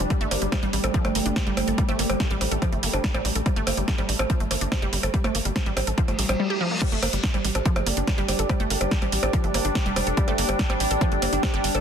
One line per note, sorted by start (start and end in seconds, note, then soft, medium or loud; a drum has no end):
0.00 6.40 G3 medium
0.00 0.12 D4 medium
0.10 0.20 G3 loud
0.10 6.42 A3 medium
0.10 kick loud
0.10 closed hi-hat soft
0.21 0.27 G1 medium
0.21 0.28 A3 loud
0.21 closed hi-hat soft
0.31 0.38 G1 loud
0.31 0.35 A#3 medium
0.31 open hi-hat loud
0.31 percussion blips soft
0.42 0.48 G1 medium
0.42 0.49 G3 medium
0.42 closed hi-hat medium
0.52 0.59 G3 medium
0.52 kick loud
0.52 snare loud
0.52 closed hi-hat medium
0.52 percussion blips medium
0.63 0.69 A1 medium
0.63 0.67 G3 loud
0.63 closed hi-hat soft
0.73 0.80 A1 loud
0.73 0.77 G3 medium
0.73 open hi-hat medium
0.84 0.90 A1 medium
0.84 0.90 A4 medium
0.84 closed hi-hat medium
0.84 percussion blips soft
0.94 1.04 F3 loud
0.94 kick loud
0.94 closed hi-hat soft
1.05 1.11 G1 medium
1.05 1.11 A3 medium
1.05 closed hi-hat soft
1.05 percussion blips medium
1.15 1.21 G1 loud
1.15 1.19 A#3 medium
1.15 open hi-hat loud
1.26 1.32 G1 medium
1.26 1.32 D4 medium
1.26 closed hi-hat medium
1.36 1.43 G3 medium
1.36 kick loud
1.36 snare loud
1.36 closed hi-hat soft
1.36 percussion blips soft
1.47 1.53 G1 medium
1.47 1.51 G3 loud
1.47 closed hi-hat soft
1.57 1.63 G1 loud
1.57 1.64 G3 medium
1.57 open hi-hat medium
1.57 percussion blips medium
1.68 1.74 G1 medium
1.68 1.74 A4 medium
1.68 closed hi-hat medium
1.78 1.88 G3 loud
1.78 kick loud
1.78 closed hi-hat medium
1.89 1.95 G1 medium
1.89 1.95 A3 loud
1.89 closed hi-hat soft
1.89 percussion blips soft
1.99 2.05 G1 loud
1.99 2.03 A#3 medium
1.99 open hi-hat loud
2.10 2.16 G1 medium
2.10 2.16 G3 medium
2.10 closed hi-hat medium
2.10 percussion blips medium
2.20 2.27 G3 medium
2.20 kick loud
2.20 snare loud
2.20 closed hi-hat medium
2.31 2.37 A1 medium
2.31 2.35 G3 loud
2.31 closed hi-hat soft
2.41 2.47 A1 loud
2.41 2.45 G3 medium
2.41 open hi-hat medium
2.41 percussion blips soft
2.52 2.58 A1 medium
2.52 2.58 A4 medium
2.52 closed hi-hat medium
2.62 2.72 F3 loud
2.62 kick loud
2.62 closed hi-hat medium
2.62 percussion blips medium
2.72 2.79 G1 medium
2.72 2.79 A3 medium
2.72 closed hi-hat soft
2.83 2.89 G1 loud
2.83 2.87 A#3 medium
2.83 open hi-hat loud
2.93 3.00 G1 medium
2.93 3.00 D4 medium
2.93 closed hi-hat medium
2.93 percussion blips soft
3.04 3.11 G3 medium
3.04 kick loud
3.04 snare loud
3.04 closed hi-hat medium
3.14 3.21 A#1 medium
3.14 3.19 G3 loud
3.14 closed hi-hat soft
3.14 percussion blips medium
3.25 3.31 A#1 loud
3.25 3.32 G3 medium
3.25 open hi-hat medium
3.35 3.42 A#1 medium
3.35 3.42 A4 medium
3.35 closed hi-hat medium
3.46 3.56 G3 loud
3.46 kick loud
3.46 closed hi-hat medium
3.46 percussion blips soft
3.56 3.63 G1 medium
3.56 3.63 A3 loud
3.56 closed hi-hat soft
3.67 3.73 G1 loud
3.67 3.71 A#3 medium
3.67 open hi-hat loud
3.67 percussion blips medium
3.77 3.84 G1 medium
3.77 3.84 G3 medium
3.77 closed hi-hat medium
3.88 3.95 G3 medium
3.88 kick loud
3.88 snare loud
3.88 closed hi-hat medium
3.98 4.05 A1 medium
3.98 4.02 G3 loud
3.98 closed hi-hat soft
3.98 percussion blips soft
4.09 4.15 A1 loud
4.09 4.13 G3 medium
4.09 open hi-hat medium
4.19 4.26 A1 medium
4.19 4.26 A4 medium
4.19 closed hi-hat medium
4.19 percussion blips medium
4.30 4.40 F3 loud
4.30 kick loud
4.30 closed hi-hat medium
4.40 4.47 G1 medium
4.40 4.47 A3 medium
4.40 closed hi-hat soft
4.51 4.57 G1 loud
4.51 4.55 A#3 medium
4.51 open hi-hat loud
4.51 percussion blips soft
4.61 4.68 G1 medium
4.61 4.68 D4 medium
4.61 closed hi-hat medium
4.72 4.79 G3 medium
4.72 kick loud
4.72 snare loud
4.72 closed hi-hat medium
4.72 percussion blips medium
4.82 4.89 G1 medium
4.82 4.86 G3 loud
4.82 closed hi-hat soft
4.93 4.99 G1 loud
4.93 5.00 G3 medium
4.93 open hi-hat medium
5.03 5.10 G1 medium
5.03 5.10 A4 medium
5.03 closed hi-hat medium
5.03 percussion blips soft
5.14 5.24 G3 loud
5.14 kick loud
5.14 closed hi-hat medium
5.24 5.31 G1 medium
5.24 5.31 A3 loud
5.24 closed hi-hat soft
5.24 percussion blips medium
5.35 5.41 G1 loud
5.35 5.39 A#3 medium
5.35 open hi-hat loud
5.45 5.52 G1 medium
5.45 5.52 G3 medium
5.45 closed hi-hat medium
5.56 kick loud
5.56 snare loud
5.56 closed hi-hat medium
5.56 percussion blips soft
5.66 5.73 A1 medium
5.66 5.70 G3 loud
5.66 closed hi-hat soft
5.77 5.83 A1 loud
5.77 5.81 G3 medium
5.77 open hi-hat medium
5.77 percussion blips medium
5.87 5.94 A1 medium
5.87 5.94 A4 medium
5.87 closed hi-hat medium
5.98 6.08 F3 loud
5.98 kick loud
5.98 closed hi-hat medium
5.98 reverse cymbal medium
6.08 6.15 G1 medium
6.08 6.15 A3 medium
6.08 closed hi-hat soft
6.08 percussion blips soft
6.19 6.25 A#1 loud
6.19 6.28 G3 medium
6.19 open hi-hat loud
6.29 6.35 A#1 medium
6.29 6.36 G3 medium
6.29 closed hi-hat medium
6.29 percussion blips medium
6.40 6.46 G3 loud
6.50 6.54 G4 loud
6.61 6.65 F3 loud
6.71 6.78 A#3 medium
6.82 6.92 G3 loud
6.82 11.81 G3 medium
6.82 11.81 D4 medium
6.82 11.81 G4 medium
6.82 kick loud
6.82 closed hi-hat medium
6.82 crash loud
6.82 percussion blips soft
6.92 6.98 G1 medium
6.92 6.99 A3 loud
6.92 closed hi-hat soft
7.03 7.09 G1 loud
7.03 7.07 A#3 medium
7.03 open hi-hat loud
7.03 percussion blips medium
7.13 7.19 G1 medium
7.13 7.20 G3 medium
7.13 11.81 D5 medium
7.13 closed hi-hat medium
7.24 7.30 G3 medium
7.24 kick loud
7.24 snare loud
7.24 closed hi-hat medium
7.34 7.40 A1 medium
7.34 7.38 G3 loud
7.34 closed hi-hat soft
7.34 percussion blips soft
7.45 7.51 A1 loud
7.45 7.49 G3 medium
7.45 11.81 G5 medium
7.45 open hi-hat medium
7.55 7.61 A1 medium
7.55 7.62 A4 medium
7.55 closed hi-hat medium
7.55 percussion blips soft
7.66 7.75 F3 loud
7.66 kick loud
7.66 closed hi-hat medium
7.76 7.82 G1 medium
7.76 7.83 A3 medium
7.76 closed hi-hat soft
7.76 percussion blips medium
7.86 7.93 G1 loud
7.86 7.91 A#3 medium
7.86 open hi-hat loud
7.97 8.03 G1 medium
7.97 8.04 D4 medium
7.97 closed hi-hat medium
8.07 8.14 G3 medium
8.07 kick loud
8.07 snare loud
8.07 closed hi-hat medium
8.07 percussion blips soft
8.18 8.24 G1 medium
8.18 8.22 G3 loud
8.18 closed hi-hat soft
8.28 8.35 G1 loud
8.28 8.35 G3 medium
8.28 open hi-hat medium
8.28 percussion blips soft
8.39 8.45 G1 medium
8.39 8.46 A4 medium
8.39 closed hi-hat medium
8.49 8.59 G3 loud
8.49 kick loud
8.49 closed hi-hat medium
8.49 percussion blips medium
8.60 8.66 G1 medium
8.60 8.67 A3 loud
8.60 closed hi-hat soft
8.70 8.77 G1 loud
8.70 8.74 A#3 medium
8.70 open hi-hat loud
8.81 8.87 G1 medium
8.81 8.88 G3 medium
8.81 closed hi-hat medium
8.81 percussion blips soft
8.91 8.98 G3 medium
8.91 kick loud
8.91 snare loud
8.91 closed hi-hat medium
9.02 9.08 A1 medium
9.02 9.06 G3 loud
9.02 closed hi-hat soft
9.02 percussion blips soft
9.12 9.19 A1 loud
9.12 9.16 G3 medium
9.12 open hi-hat loud
9.23 9.29 A1 medium
9.23 9.30 A4 medium
9.23 closed hi-hat medium
9.23 percussion blips medium
9.33 9.43 F3 loud
9.33 kick loud
9.33 closed hi-hat medium
9.44 9.50 G1 medium
9.44 9.51 A3 medium
9.44 closed hi-hat soft
9.54 9.61 G1 loud
9.54 9.58 A#3 medium
9.54 open hi-hat loud
9.54 percussion blips soft
9.65 9.71 G1 medium
9.65 9.72 D4 medium
9.65 closed hi-hat medium
9.75 9.82 G3 medium
9.75 kick loud
9.75 snare loud
9.75 closed hi-hat medium
9.75 percussion blips soft
9.86 9.92 F1 medium
9.86 9.90 G3 loud
9.86 closed hi-hat soft
9.96 10.03 F1 loud
9.96 10.03 G3 medium
9.96 open hi-hat loud
9.96 percussion blips medium
10.07 10.13 F1 medium
10.07 10.14 A4 medium
10.07 closed hi-hat medium
10.17 10.27 G3 loud
10.17 kick loud
10.17 closed hi-hat medium
10.28 10.34 G1 medium
10.28 10.35 A3 loud
10.28 closed hi-hat soft
10.28 percussion blips soft
10.38 10.45 G1 loud
10.38 10.42 A#3 medium
10.38 open hi-hat loud
10.49 10.55 G1 medium
10.49 10.56 G3 medium
10.49 closed hi-hat medium
10.49 percussion blips soft
10.59 10.66 G3 medium
10.59 kick loud
10.59 snare loud
10.59 closed hi-hat medium
10.70 10.76 A1 medium
10.70 10.74 G3 loud
10.70 closed hi-hat soft
10.70 percussion blips medium
10.80 10.87 A1 loud
10.80 10.84 G3 medium
10.80 open hi-hat loud
10.91 10.97 A1 medium
10.91 10.97 A4 medium
10.91 closed hi-hat medium
11.01 11.11 F3 loud
11.01 kick loud
11.01 closed hi-hat medium
11.01 percussion blips soft
11.12 11.18 G1 medium
11.12 11.18 A3 medium
11.12 closed hi-hat soft
11.22 11.29 G1 loud
11.22 11.26 A#3 medium
11.22 open hi-hat loud
11.22 percussion blips soft
11.33 11.39 G1 medium
11.33 11.39 D4 medium
11.33 closed hi-hat medium
11.43 11.50 G3 medium
11.43 kick loud
11.43 snare loud
11.43 closed hi-hat medium
11.43 percussion blips medium
11.54 11.60 G1 medium
11.54 11.58 G3 loud
11.54 closed hi-hat soft
11.64 11.70 G1 loud
11.64 11.71 G3 medium
11.64 open hi-hat loud
11.75 11.81 G1 medium
11.75 11.81 A4 medium
11.75 closed hi-hat medium
11.75 percussion blips soft